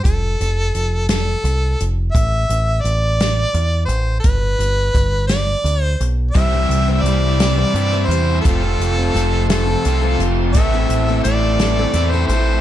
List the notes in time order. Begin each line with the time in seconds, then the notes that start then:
0.03 F1 A4, kick, closed hi-hat
0.40 F1, closed hi-hat
0.75 F1, closed hi-hat
1.09 A4, snare, closed hi-hat
1.44 C2, closed hi-hat
1.80 F1, closed hi-hat
2.12 A1 E5, kick, closed hi-hat
2.49 A1, closed hi-hat
2.81 A1 D5
2.85 closed hi-hat
3.20 snare, closed hi-hat
3.54 E2, closed hi-hat
3.86 A1 C5, closed hi-hat
4.20 B4
4.24 G1, kick, closed hi-hat
4.59 G1, closed hi-hat
4.94 G1, kick, closed hi-hat
5.27 D5, snare, closed hi-hat
5.64 D2, closed hi-hat
5.83 C5
6.00 B1, closed hi-hat
6.31 C2 C3 E3 C5 E5 G5 E6, kick
6.36 E3 G3 C4 E4 C5, closed hi-hat
6.53 G3 C4 E4 C5
6.69 C2, closed hi-hat
6.88 G3 C4 E4 C5
7.02 C2 G3 D5
7.06 C4 E4 C5, closed hi-hat
7.40 C3 E3 G3 C4 E4 C5, snare, closed hi-hat
7.57 G3 C4 E4 C5
7.74 G2 C3 E3 G3 C4 E4, closed hi-hat
7.92 G3 C4 E4 C5
8.06 E2 C5
8.10 G3 C4 E4 C5, closed hi-hat
8.41 F3 A3 A4 F5 C6
8.45 F1 F2 C3 F3 A3 C4 F4 A4, kick, closed hi-hat
8.63 C4 F4 A4
8.79 F1, closed hi-hat
8.96 C4 F4 A4
9.14 F1 A3 C4 F4 A4, closed hi-hat
9.49 F3 A3 C4 F4 A4, snare, closed hi-hat
9.67 C4 F4 A4
9.85 C2 F2 C3 F3 A3 C4 F4, closed hi-hat
10.02 C4 F4 A4
10.19 F1 A3 C4 F4 A4, closed hi-hat
10.52 A1 A2 E3 A4 E5 C6, kick, closed hi-hat
10.56 A2 E3 A3 C4 E4 A4
10.74 A3 C4 E4 A4
10.89 A1, closed hi-hat
11.08 A3 C4 E4 A4
11.24 A1 A3 C4 E4 A4 D5, closed hi-hat
11.59 A2 E3 A3 C4 E4 A4, snare, closed hi-hat
11.79 A3 C4 E4 A4
11.93 E2 A2 E3 A3 C4 E4, closed hi-hat
12.11 A3 C4 E4 A4 C5
12.27 A1 A3 C4 C5, closed hi-hat
12.31 E4 A4